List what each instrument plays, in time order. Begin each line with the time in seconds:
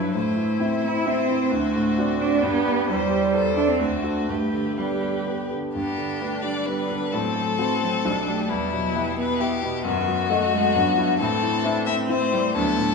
Already playing: grand piano G2 E4 E5, cello F#3, viola E4, violin B4
0.15 grand piano A2, cello A3, viola E4, violin C5
0.37 grand piano E3
0.60 grand piano C4 E4 E5
0.83 grand piano C4, cello E4
1.05 grand piano C4 E4 E5, cello C4
1.29 grand piano E3
1.52 grand piano D2, cello A3, viola F#4
1.75 grand piano A2
1.98 grand piano C4 F#4 D5
2.21 grand piano C4, cello D4
2.42 grand piano G2, cello B3, viola G4, violin B4
2.65 grand piano G4 D5
2.88 grand piano E2, cello G3, viola G4, violin C5
3.09 grand piano G4 C5
3.33 grand piano E2, viola A4, violin C5
3.56 cello D4, grand piano E4 A4
3.68 cello C4
3.79 grand piano D2, cello A3, viola F#4, violin C5
4.03 grand piano F#4 A4
4.28 grand piano G2, cello A3, viola G4, violin B4
4.54 grand piano D3
4.76 cello G3, grand piano B3 G4 B4, viola G4, violin B4
5.01 grand piano B3
5.27 grand piano B3 G4 B4
5.51 grand piano D3
5.75 grand piano G2, cello B3, viola D4, violin G4
5.98 grand piano D3
6.21 cello A3, grand piano D4 G4 B4
6.43 cello G3, grand piano D4, violin D5
6.66 cello G3, viola B3, grand piano D4 G4 B4, violin B4
6.91 grand piano D3
7.12 grand piano A2, cello F#3, viola C4, violin A4
7.35 grand piano A3
7.59 cello E3, viola C4, grand piano C4 F#4 C5
7.81 cello F#3, grand piano C4
8.04 grand piano B1, cello G3, viola D4
8.27 cello A3, grand piano G4 D5
8.50 grand piano E2, cello G3, viola B3, violin E4
8.72 grand piano B2, cello F#3
8.95 cello E3, grand piano B3 G4 E5
9.17 grand piano B3, violin B4
9.39 grand piano B3 G4 E5, violin G4
9.63 grand piano B2
9.85 grand piano F#2, cello D#3, viola B3, violin F#4
10.08 grand piano F#3
10.30 cello D#3, grand piano A3 F#4 D#5, viola A3
10.53 cello G#3, grand piano A3
10.74 grand piano G2, cello F#3, viola B3
10.98 grand piano E4 E5
11.20 grand piano A2, cello E3, viola C4, violin A4
11.42 grand piano E3
11.64 grand piano C4 E4 E5, viola D4
11.86 viola C4, grand piano C4, violin E5
12.08 cello A3, grand piano C4 E4 E5, violin C5
12.32 grand piano E3, cello G3
12.55 grand piano D2, cello F#3, viola B3, violin A4
12.77 grand piano A2, cello F#3